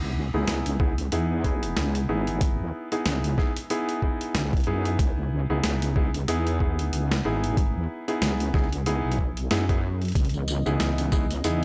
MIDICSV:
0, 0, Header, 1, 5, 480
1, 0, Start_track
1, 0, Key_signature, 4, "minor"
1, 0, Tempo, 645161
1, 1794, Time_signature, 4, 2, 24, 8
1, 8664, End_track
2, 0, Start_track
2, 0, Title_t, "Grand piano"
2, 0, Program_c, 0, 0
2, 0, Note_on_c, 0, 59, 79
2, 0, Note_on_c, 0, 63, 71
2, 0, Note_on_c, 0, 64, 71
2, 0, Note_on_c, 0, 68, 87
2, 114, Note_off_c, 0, 59, 0
2, 114, Note_off_c, 0, 63, 0
2, 114, Note_off_c, 0, 68, 0
2, 115, Note_off_c, 0, 64, 0
2, 252, Note_on_c, 0, 59, 71
2, 252, Note_on_c, 0, 63, 67
2, 252, Note_on_c, 0, 64, 68
2, 252, Note_on_c, 0, 68, 81
2, 570, Note_off_c, 0, 59, 0
2, 570, Note_off_c, 0, 63, 0
2, 570, Note_off_c, 0, 64, 0
2, 570, Note_off_c, 0, 68, 0
2, 593, Note_on_c, 0, 63, 71
2, 593, Note_on_c, 0, 64, 74
2, 593, Note_on_c, 0, 68, 85
2, 594, Note_on_c, 0, 59, 78
2, 681, Note_off_c, 0, 59, 0
2, 681, Note_off_c, 0, 63, 0
2, 681, Note_off_c, 0, 64, 0
2, 681, Note_off_c, 0, 68, 0
2, 835, Note_on_c, 0, 59, 81
2, 835, Note_on_c, 0, 63, 75
2, 835, Note_on_c, 0, 64, 77
2, 835, Note_on_c, 0, 68, 89
2, 1050, Note_off_c, 0, 59, 0
2, 1050, Note_off_c, 0, 63, 0
2, 1050, Note_off_c, 0, 64, 0
2, 1050, Note_off_c, 0, 68, 0
2, 1075, Note_on_c, 0, 63, 63
2, 1075, Note_on_c, 0, 64, 64
2, 1075, Note_on_c, 0, 68, 75
2, 1076, Note_on_c, 0, 59, 67
2, 1530, Note_off_c, 0, 59, 0
2, 1530, Note_off_c, 0, 63, 0
2, 1530, Note_off_c, 0, 64, 0
2, 1530, Note_off_c, 0, 68, 0
2, 1555, Note_on_c, 0, 59, 76
2, 1555, Note_on_c, 0, 63, 74
2, 1555, Note_on_c, 0, 68, 84
2, 1556, Note_on_c, 0, 64, 72
2, 2139, Note_off_c, 0, 59, 0
2, 2139, Note_off_c, 0, 63, 0
2, 2139, Note_off_c, 0, 64, 0
2, 2139, Note_off_c, 0, 68, 0
2, 2171, Note_on_c, 0, 63, 65
2, 2172, Note_on_c, 0, 59, 73
2, 2172, Note_on_c, 0, 64, 66
2, 2172, Note_on_c, 0, 68, 80
2, 2489, Note_off_c, 0, 63, 0
2, 2490, Note_off_c, 0, 59, 0
2, 2490, Note_off_c, 0, 64, 0
2, 2490, Note_off_c, 0, 68, 0
2, 2514, Note_on_c, 0, 64, 75
2, 2515, Note_on_c, 0, 59, 78
2, 2515, Note_on_c, 0, 63, 74
2, 2515, Note_on_c, 0, 68, 89
2, 2602, Note_off_c, 0, 59, 0
2, 2602, Note_off_c, 0, 63, 0
2, 2602, Note_off_c, 0, 64, 0
2, 2602, Note_off_c, 0, 68, 0
2, 2755, Note_on_c, 0, 59, 85
2, 2755, Note_on_c, 0, 63, 74
2, 2755, Note_on_c, 0, 64, 77
2, 2755, Note_on_c, 0, 68, 96
2, 2970, Note_off_c, 0, 59, 0
2, 2970, Note_off_c, 0, 63, 0
2, 2970, Note_off_c, 0, 64, 0
2, 2970, Note_off_c, 0, 68, 0
2, 2996, Note_on_c, 0, 59, 70
2, 2996, Note_on_c, 0, 63, 65
2, 2996, Note_on_c, 0, 64, 64
2, 2996, Note_on_c, 0, 68, 77
2, 3450, Note_off_c, 0, 59, 0
2, 3450, Note_off_c, 0, 63, 0
2, 3450, Note_off_c, 0, 64, 0
2, 3450, Note_off_c, 0, 68, 0
2, 3474, Note_on_c, 0, 59, 79
2, 3474, Note_on_c, 0, 63, 71
2, 3474, Note_on_c, 0, 64, 69
2, 3474, Note_on_c, 0, 68, 90
2, 4058, Note_off_c, 0, 59, 0
2, 4058, Note_off_c, 0, 68, 0
2, 4059, Note_off_c, 0, 63, 0
2, 4059, Note_off_c, 0, 64, 0
2, 4091, Note_on_c, 0, 63, 66
2, 4091, Note_on_c, 0, 64, 68
2, 4091, Note_on_c, 0, 68, 80
2, 4092, Note_on_c, 0, 59, 74
2, 4409, Note_off_c, 0, 59, 0
2, 4409, Note_off_c, 0, 63, 0
2, 4409, Note_off_c, 0, 64, 0
2, 4409, Note_off_c, 0, 68, 0
2, 4433, Note_on_c, 0, 64, 72
2, 4434, Note_on_c, 0, 59, 79
2, 4434, Note_on_c, 0, 63, 73
2, 4434, Note_on_c, 0, 68, 87
2, 4521, Note_off_c, 0, 63, 0
2, 4521, Note_off_c, 0, 64, 0
2, 4521, Note_off_c, 0, 68, 0
2, 4522, Note_off_c, 0, 59, 0
2, 4673, Note_on_c, 0, 59, 85
2, 4673, Note_on_c, 0, 63, 78
2, 4673, Note_on_c, 0, 64, 77
2, 4673, Note_on_c, 0, 68, 93
2, 4889, Note_off_c, 0, 59, 0
2, 4889, Note_off_c, 0, 63, 0
2, 4889, Note_off_c, 0, 64, 0
2, 4889, Note_off_c, 0, 68, 0
2, 4913, Note_on_c, 0, 63, 65
2, 4913, Note_on_c, 0, 64, 63
2, 4913, Note_on_c, 0, 68, 75
2, 4914, Note_on_c, 0, 59, 70
2, 5369, Note_off_c, 0, 59, 0
2, 5369, Note_off_c, 0, 63, 0
2, 5369, Note_off_c, 0, 64, 0
2, 5369, Note_off_c, 0, 68, 0
2, 5394, Note_on_c, 0, 59, 75
2, 5394, Note_on_c, 0, 63, 70
2, 5394, Note_on_c, 0, 64, 72
2, 5394, Note_on_c, 0, 68, 83
2, 5978, Note_off_c, 0, 59, 0
2, 5978, Note_off_c, 0, 64, 0
2, 5978, Note_off_c, 0, 68, 0
2, 5979, Note_off_c, 0, 63, 0
2, 6011, Note_on_c, 0, 59, 74
2, 6011, Note_on_c, 0, 68, 81
2, 6012, Note_on_c, 0, 63, 68
2, 6012, Note_on_c, 0, 64, 66
2, 6329, Note_off_c, 0, 59, 0
2, 6329, Note_off_c, 0, 68, 0
2, 6330, Note_off_c, 0, 63, 0
2, 6330, Note_off_c, 0, 64, 0
2, 6355, Note_on_c, 0, 59, 77
2, 6355, Note_on_c, 0, 63, 74
2, 6355, Note_on_c, 0, 64, 71
2, 6355, Note_on_c, 0, 68, 89
2, 6442, Note_off_c, 0, 59, 0
2, 6442, Note_off_c, 0, 63, 0
2, 6442, Note_off_c, 0, 64, 0
2, 6442, Note_off_c, 0, 68, 0
2, 6595, Note_on_c, 0, 59, 83
2, 6595, Note_on_c, 0, 63, 78
2, 6595, Note_on_c, 0, 64, 73
2, 6595, Note_on_c, 0, 68, 92
2, 6810, Note_off_c, 0, 59, 0
2, 6810, Note_off_c, 0, 63, 0
2, 6810, Note_off_c, 0, 64, 0
2, 6810, Note_off_c, 0, 68, 0
2, 7075, Note_on_c, 0, 59, 86
2, 7075, Note_on_c, 0, 63, 78
2, 7075, Note_on_c, 0, 64, 79
2, 7075, Note_on_c, 0, 68, 96
2, 7162, Note_off_c, 0, 59, 0
2, 7162, Note_off_c, 0, 63, 0
2, 7162, Note_off_c, 0, 64, 0
2, 7162, Note_off_c, 0, 68, 0
2, 7212, Note_on_c, 0, 59, 83
2, 7212, Note_on_c, 0, 63, 79
2, 7212, Note_on_c, 0, 64, 82
2, 7212, Note_on_c, 0, 68, 93
2, 7277, Note_off_c, 0, 59, 0
2, 7277, Note_off_c, 0, 63, 0
2, 7277, Note_off_c, 0, 64, 0
2, 7277, Note_off_c, 0, 68, 0
2, 7931, Note_on_c, 0, 59, 75
2, 7931, Note_on_c, 0, 63, 67
2, 7931, Note_on_c, 0, 64, 69
2, 7931, Note_on_c, 0, 68, 82
2, 8249, Note_off_c, 0, 59, 0
2, 8249, Note_off_c, 0, 63, 0
2, 8249, Note_off_c, 0, 64, 0
2, 8249, Note_off_c, 0, 68, 0
2, 8274, Note_on_c, 0, 59, 79
2, 8274, Note_on_c, 0, 63, 74
2, 8274, Note_on_c, 0, 64, 71
2, 8275, Note_on_c, 0, 68, 85
2, 8361, Note_off_c, 0, 64, 0
2, 8362, Note_off_c, 0, 59, 0
2, 8362, Note_off_c, 0, 63, 0
2, 8362, Note_off_c, 0, 68, 0
2, 8515, Note_on_c, 0, 59, 82
2, 8515, Note_on_c, 0, 63, 80
2, 8515, Note_on_c, 0, 64, 77
2, 8515, Note_on_c, 0, 68, 90
2, 8664, Note_off_c, 0, 59, 0
2, 8664, Note_off_c, 0, 63, 0
2, 8664, Note_off_c, 0, 64, 0
2, 8664, Note_off_c, 0, 68, 0
2, 8664, End_track
3, 0, Start_track
3, 0, Title_t, "Analog synth pad"
3, 0, Program_c, 1, 89
3, 7552, Note_on_c, 1, 59, 76
3, 7553, Note_on_c, 1, 49, 78
3, 7553, Note_on_c, 1, 52, 89
3, 7553, Note_on_c, 1, 75, 73
3, 8664, Note_off_c, 1, 49, 0
3, 8664, Note_off_c, 1, 52, 0
3, 8664, Note_off_c, 1, 59, 0
3, 8664, Note_off_c, 1, 75, 0
3, 8664, End_track
4, 0, Start_track
4, 0, Title_t, "Wobble bass"
4, 0, Program_c, 2, 39
4, 0, Note_on_c, 2, 37, 92
4, 229, Note_off_c, 2, 37, 0
4, 252, Note_on_c, 2, 37, 96
4, 338, Note_off_c, 2, 37, 0
4, 353, Note_on_c, 2, 37, 92
4, 577, Note_off_c, 2, 37, 0
4, 594, Note_on_c, 2, 37, 98
4, 818, Note_off_c, 2, 37, 0
4, 833, Note_on_c, 2, 40, 91
4, 1297, Note_off_c, 2, 40, 0
4, 1314, Note_on_c, 2, 37, 94
4, 1538, Note_off_c, 2, 37, 0
4, 1555, Note_on_c, 2, 32, 89
4, 1910, Note_off_c, 2, 32, 0
4, 1933, Note_on_c, 2, 40, 92
4, 2018, Note_off_c, 2, 40, 0
4, 2274, Note_on_c, 2, 37, 89
4, 2498, Note_off_c, 2, 37, 0
4, 3233, Note_on_c, 2, 37, 99
4, 3457, Note_off_c, 2, 37, 0
4, 3473, Note_on_c, 2, 42, 86
4, 3697, Note_off_c, 2, 42, 0
4, 3713, Note_on_c, 2, 37, 92
4, 4069, Note_off_c, 2, 37, 0
4, 4091, Note_on_c, 2, 37, 95
4, 4177, Note_off_c, 2, 37, 0
4, 4194, Note_on_c, 2, 37, 93
4, 4418, Note_off_c, 2, 37, 0
4, 4433, Note_on_c, 2, 37, 96
4, 4657, Note_off_c, 2, 37, 0
4, 4674, Note_on_c, 2, 40, 91
4, 5001, Note_off_c, 2, 40, 0
4, 5001, Note_on_c, 2, 39, 91
4, 5138, Note_off_c, 2, 39, 0
4, 5153, Note_on_c, 2, 37, 95
4, 5377, Note_off_c, 2, 37, 0
4, 5394, Note_on_c, 2, 32, 87
4, 5749, Note_off_c, 2, 32, 0
4, 5771, Note_on_c, 2, 40, 95
4, 5857, Note_off_c, 2, 40, 0
4, 6112, Note_on_c, 2, 37, 92
4, 6337, Note_off_c, 2, 37, 0
4, 6354, Note_on_c, 2, 37, 99
4, 6710, Note_off_c, 2, 37, 0
4, 6731, Note_on_c, 2, 35, 98
4, 7057, Note_off_c, 2, 35, 0
4, 7073, Note_on_c, 2, 42, 97
4, 7537, Note_off_c, 2, 42, 0
4, 7554, Note_on_c, 2, 37, 93
4, 7910, Note_off_c, 2, 37, 0
4, 7933, Note_on_c, 2, 37, 98
4, 8018, Note_off_c, 2, 37, 0
4, 8035, Note_on_c, 2, 37, 88
4, 8258, Note_off_c, 2, 37, 0
4, 8274, Note_on_c, 2, 37, 99
4, 8498, Note_off_c, 2, 37, 0
4, 8515, Note_on_c, 2, 40, 95
4, 8664, Note_off_c, 2, 40, 0
4, 8664, End_track
5, 0, Start_track
5, 0, Title_t, "Drums"
5, 354, Note_on_c, 9, 38, 117
5, 354, Note_on_c, 9, 42, 82
5, 428, Note_off_c, 9, 38, 0
5, 428, Note_off_c, 9, 42, 0
5, 491, Note_on_c, 9, 42, 53
5, 566, Note_off_c, 9, 42, 0
5, 594, Note_on_c, 9, 36, 103
5, 668, Note_off_c, 9, 36, 0
5, 731, Note_on_c, 9, 42, 52
5, 805, Note_off_c, 9, 42, 0
5, 834, Note_on_c, 9, 42, 78
5, 908, Note_off_c, 9, 42, 0
5, 1074, Note_on_c, 9, 36, 60
5, 1074, Note_on_c, 9, 42, 36
5, 1149, Note_off_c, 9, 36, 0
5, 1149, Note_off_c, 9, 42, 0
5, 1211, Note_on_c, 9, 42, 37
5, 1286, Note_off_c, 9, 42, 0
5, 1314, Note_on_c, 9, 38, 110
5, 1314, Note_on_c, 9, 42, 79
5, 1388, Note_off_c, 9, 38, 0
5, 1388, Note_off_c, 9, 42, 0
5, 1451, Note_on_c, 9, 42, 38
5, 1525, Note_off_c, 9, 42, 0
5, 1691, Note_on_c, 9, 42, 37
5, 1765, Note_off_c, 9, 42, 0
5, 1793, Note_on_c, 9, 42, 82
5, 1794, Note_on_c, 9, 36, 118
5, 1868, Note_off_c, 9, 36, 0
5, 1868, Note_off_c, 9, 42, 0
5, 2172, Note_on_c, 9, 42, 36
5, 2246, Note_off_c, 9, 42, 0
5, 2274, Note_on_c, 9, 38, 124
5, 2274, Note_on_c, 9, 42, 83
5, 2348, Note_off_c, 9, 38, 0
5, 2348, Note_off_c, 9, 42, 0
5, 2412, Note_on_c, 9, 42, 53
5, 2486, Note_off_c, 9, 42, 0
5, 2514, Note_on_c, 9, 36, 103
5, 2515, Note_on_c, 9, 38, 36
5, 2588, Note_off_c, 9, 36, 0
5, 2589, Note_off_c, 9, 38, 0
5, 2652, Note_on_c, 9, 42, 53
5, 2727, Note_off_c, 9, 42, 0
5, 2754, Note_on_c, 9, 42, 82
5, 2829, Note_off_c, 9, 42, 0
5, 2892, Note_on_c, 9, 42, 37
5, 2966, Note_off_c, 9, 42, 0
5, 2994, Note_on_c, 9, 36, 60
5, 3068, Note_off_c, 9, 36, 0
5, 3132, Note_on_c, 9, 42, 36
5, 3207, Note_off_c, 9, 42, 0
5, 3233, Note_on_c, 9, 38, 119
5, 3233, Note_on_c, 9, 42, 81
5, 3308, Note_off_c, 9, 38, 0
5, 3308, Note_off_c, 9, 42, 0
5, 3371, Note_on_c, 9, 36, 102
5, 3371, Note_on_c, 9, 42, 17
5, 3398, Note_off_c, 9, 42, 0
5, 3398, Note_on_c, 9, 42, 22
5, 3423, Note_off_c, 9, 42, 0
5, 3423, Note_on_c, 9, 42, 27
5, 3445, Note_off_c, 9, 36, 0
5, 3449, Note_off_c, 9, 42, 0
5, 3449, Note_on_c, 9, 42, 31
5, 3524, Note_off_c, 9, 42, 0
5, 3611, Note_on_c, 9, 42, 37
5, 3686, Note_off_c, 9, 42, 0
5, 3713, Note_on_c, 9, 36, 118
5, 3715, Note_on_c, 9, 42, 79
5, 3788, Note_off_c, 9, 36, 0
5, 3789, Note_off_c, 9, 42, 0
5, 4193, Note_on_c, 9, 38, 125
5, 4193, Note_on_c, 9, 42, 85
5, 4267, Note_off_c, 9, 38, 0
5, 4267, Note_off_c, 9, 42, 0
5, 4331, Note_on_c, 9, 42, 52
5, 4406, Note_off_c, 9, 42, 0
5, 4433, Note_on_c, 9, 36, 105
5, 4508, Note_off_c, 9, 36, 0
5, 4571, Note_on_c, 9, 42, 53
5, 4646, Note_off_c, 9, 42, 0
5, 4674, Note_on_c, 9, 42, 81
5, 4749, Note_off_c, 9, 42, 0
5, 4811, Note_on_c, 9, 42, 37
5, 4886, Note_off_c, 9, 42, 0
5, 4913, Note_on_c, 9, 36, 62
5, 4988, Note_off_c, 9, 36, 0
5, 5052, Note_on_c, 9, 42, 36
5, 5126, Note_off_c, 9, 42, 0
5, 5155, Note_on_c, 9, 42, 78
5, 5230, Note_off_c, 9, 42, 0
5, 5293, Note_on_c, 9, 38, 125
5, 5293, Note_on_c, 9, 42, 38
5, 5368, Note_off_c, 9, 38, 0
5, 5368, Note_off_c, 9, 42, 0
5, 5533, Note_on_c, 9, 42, 36
5, 5608, Note_off_c, 9, 42, 0
5, 5634, Note_on_c, 9, 36, 115
5, 5634, Note_on_c, 9, 42, 76
5, 5708, Note_off_c, 9, 36, 0
5, 5709, Note_off_c, 9, 42, 0
5, 6013, Note_on_c, 9, 42, 35
5, 6087, Note_off_c, 9, 42, 0
5, 6114, Note_on_c, 9, 38, 125
5, 6114, Note_on_c, 9, 42, 79
5, 6189, Note_off_c, 9, 38, 0
5, 6189, Note_off_c, 9, 42, 0
5, 6252, Note_on_c, 9, 42, 51
5, 6326, Note_off_c, 9, 42, 0
5, 6353, Note_on_c, 9, 38, 34
5, 6354, Note_on_c, 9, 36, 110
5, 6374, Note_off_c, 9, 38, 0
5, 6374, Note_on_c, 9, 38, 27
5, 6393, Note_off_c, 9, 38, 0
5, 6393, Note_on_c, 9, 38, 23
5, 6413, Note_off_c, 9, 38, 0
5, 6413, Note_on_c, 9, 38, 20
5, 6428, Note_off_c, 9, 36, 0
5, 6433, Note_off_c, 9, 38, 0
5, 6433, Note_on_c, 9, 38, 15
5, 6453, Note_off_c, 9, 38, 0
5, 6453, Note_on_c, 9, 38, 13
5, 6472, Note_off_c, 9, 38, 0
5, 6472, Note_on_c, 9, 38, 11
5, 6492, Note_on_c, 9, 42, 50
5, 6547, Note_off_c, 9, 38, 0
5, 6566, Note_off_c, 9, 42, 0
5, 6593, Note_on_c, 9, 42, 77
5, 6668, Note_off_c, 9, 42, 0
5, 6782, Note_on_c, 9, 42, 35
5, 6834, Note_on_c, 9, 36, 62
5, 6856, Note_off_c, 9, 42, 0
5, 6908, Note_off_c, 9, 36, 0
5, 6972, Note_on_c, 9, 42, 34
5, 7046, Note_off_c, 9, 42, 0
5, 7074, Note_on_c, 9, 38, 119
5, 7074, Note_on_c, 9, 42, 78
5, 7148, Note_off_c, 9, 38, 0
5, 7148, Note_off_c, 9, 42, 0
5, 7211, Note_on_c, 9, 36, 101
5, 7212, Note_on_c, 9, 42, 37
5, 7286, Note_off_c, 9, 36, 0
5, 7286, Note_off_c, 9, 42, 0
5, 7452, Note_on_c, 9, 42, 17
5, 7478, Note_off_c, 9, 42, 0
5, 7478, Note_on_c, 9, 42, 19
5, 7503, Note_off_c, 9, 42, 0
5, 7503, Note_on_c, 9, 42, 20
5, 7529, Note_off_c, 9, 42, 0
5, 7529, Note_on_c, 9, 42, 23
5, 7554, Note_on_c, 9, 36, 118
5, 7555, Note_off_c, 9, 42, 0
5, 7555, Note_on_c, 9, 42, 76
5, 7555, Note_on_c, 9, 54, 42
5, 7589, Note_off_c, 9, 42, 0
5, 7589, Note_on_c, 9, 42, 27
5, 7624, Note_off_c, 9, 42, 0
5, 7624, Note_on_c, 9, 42, 30
5, 7629, Note_off_c, 9, 36, 0
5, 7629, Note_off_c, 9, 54, 0
5, 7659, Note_off_c, 9, 42, 0
5, 7659, Note_on_c, 9, 42, 32
5, 7693, Note_on_c, 9, 54, 21
5, 7733, Note_off_c, 9, 42, 0
5, 7768, Note_off_c, 9, 54, 0
5, 7795, Note_on_c, 9, 54, 76
5, 7870, Note_off_c, 9, 54, 0
5, 7933, Note_on_c, 9, 54, 30
5, 8007, Note_off_c, 9, 54, 0
5, 8034, Note_on_c, 9, 38, 120
5, 8034, Note_on_c, 9, 42, 76
5, 8034, Note_on_c, 9, 54, 43
5, 8109, Note_off_c, 9, 38, 0
5, 8109, Note_off_c, 9, 42, 0
5, 8109, Note_off_c, 9, 54, 0
5, 8171, Note_on_c, 9, 42, 48
5, 8171, Note_on_c, 9, 54, 20
5, 8246, Note_off_c, 9, 42, 0
5, 8246, Note_off_c, 9, 54, 0
5, 8273, Note_on_c, 9, 54, 70
5, 8274, Note_on_c, 9, 36, 106
5, 8348, Note_off_c, 9, 36, 0
5, 8348, Note_off_c, 9, 54, 0
5, 8411, Note_on_c, 9, 42, 48
5, 8411, Note_on_c, 9, 54, 32
5, 8486, Note_off_c, 9, 42, 0
5, 8486, Note_off_c, 9, 54, 0
5, 8512, Note_on_c, 9, 42, 72
5, 8512, Note_on_c, 9, 54, 39
5, 8587, Note_off_c, 9, 42, 0
5, 8587, Note_off_c, 9, 54, 0
5, 8664, End_track
0, 0, End_of_file